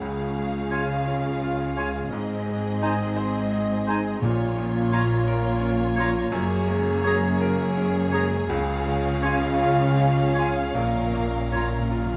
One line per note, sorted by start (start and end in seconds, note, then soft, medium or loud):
0.00 2.08 C#2 medium
0.00 2.08 C#3 medium
0.00 2.12 G#3 medium
0.00 2.08 C#4 medium
0.00 2.08 F4 medium
0.00 2.08 G#4 medium
0.00 2.08 F5 medium
0.38 0.94 G#3 medium
0.71 1.28 F4 medium
0.71 0.84 F4 medium
0.71 0.83 C#5 medium
0.71 0.88 G#5 medium
1.08 1.64 C#5 medium
1.43 1.99 F4 medium
1.76 2.13 G#3 medium
1.76 1.89 F4 medium
1.76 1.89 C#5 medium
1.76 1.93 G#5 medium
2.11 4.23 G#1 medium
2.11 4.23 G#2 medium
2.11 4.19 G#2 medium
2.11 4.19 C4 medium
2.11 4.06 C4 medium
2.11 4.06 D#4 medium
2.11 4.19 G#4 medium
2.11 4.19 D#5 medium
2.47 3.04 G#3 medium
2.82 3.39 D#4 medium
2.82 2.95 D#4 medium
2.82 2.95 C5 medium
2.82 2.99 G#5 medium
3.16 3.73 C5 medium
3.52 4.08 D#4 medium
3.87 4.23 G#3 medium
3.87 4.01 D#4 medium
3.87 4.00 C5 medium
3.87 4.04 G#5 medium
4.22 6.29 A#1 medium
4.22 5.23 A#2 loud
4.22 6.29 A#2 medium
4.22 8.50 A#3 medium
4.22 6.29 C#4 medium
4.22 6.29 F4 loud
4.22 6.29 F4 medium
4.22 8.45 C#5 medium
4.58 5.14 F3 medium
4.92 5.49 C#4 medium
4.92 5.04 F4 loud
4.92 5.05 C#5 medium
4.92 5.09 A#5 medium
5.28 5.84 A#4 medium
5.61 6.18 C#4 medium
5.96 6.33 F3 medium
5.96 6.11 F4 loud
5.96 6.09 C#5 loud
5.96 6.14 A#5 medium
6.32 8.45 F#1 loud
6.32 8.45 F#2 medium
6.32 8.46 F#2 medium
6.32 8.47 A#3 loud
6.32 10.72 G#4 loud
6.32 8.46 G#4 medium
6.68 7.26 G#3 medium
7.04 7.63 C#4 medium
7.04 7.18 G#4 loud
7.04 7.17 C#5 loud
7.04 7.22 A#5 medium
7.41 7.99 A#4 medium
7.78 8.35 C#4 medium
8.12 8.50 G#3 medium
8.12 8.26 G#4 medium
8.12 8.25 C#5 medium
8.12 8.29 A#5 medium
8.49 10.73 C#2 medium
8.49 10.77 C#2 loud
8.49 10.77 C#3 loud
8.49 12.17 C#4 loud
8.49 12.17 F4 loud
8.49 12.17 F5 medium
8.87 9.47 G#3 medium
9.23 9.84 C#4 medium
9.23 9.38 F4 medium
9.23 9.36 C#5 medium
9.23 9.41 G#5 medium
9.62 10.22 F4 medium
9.99 10.61 C#4 medium
10.35 10.76 G#3 medium
10.35 10.52 F4 medium
10.35 10.49 C#5 medium
10.35 10.55 G#5 medium
10.75 12.17 A#1 medium
10.75 12.17 A#2 medium
10.75 10.85 A#2 soft
10.75 12.17 A#4 medium
10.86 10.93 A#2 soft
10.95 11.01 A#2 soft
11.02 11.09 A#2 soft
11.10 11.16 A#2 soft
11.15 11.25 A#2 soft
11.15 11.77 A#3 medium
11.26 11.32 A#2 medium
11.33 11.40 A#2 medium
11.42 11.47 A#2 medium
11.49 11.54 A#2 medium
11.49 12.15 C#4 medium
11.53 11.63 A#2 medium
11.53 11.68 F4 medium
11.53 11.67 C#5 medium
11.53 11.73 A#5 medium
11.64 11.71 A#2 medium
11.72 11.79 A#2 medium
11.80 11.87 A#2 medium
11.88 11.95 A#2 medium
11.88 12.17 F4 medium
11.96 12.04 A#2 medium
12.05 12.12 A#2 medium
12.13 12.17 A#2 medium